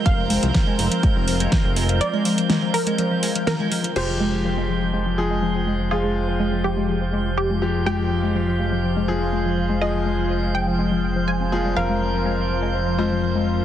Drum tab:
CC |----------------|----------------|x---------------|----------------|
HH |x-oxx-oxx-oxx-ox|x-oxx-oxx-oxx-ox|----------------|----------------|
SD |----o-------o---|----o-------o---|----------------|----------------|
BD |o---o---o---o---|----------------|----------------|----------------|

CC |----------------|----------------|----------------|
HH |----------------|----------------|----------------|
SD |----------------|----------------|----------------|
BD |----------------|----------------|----------------|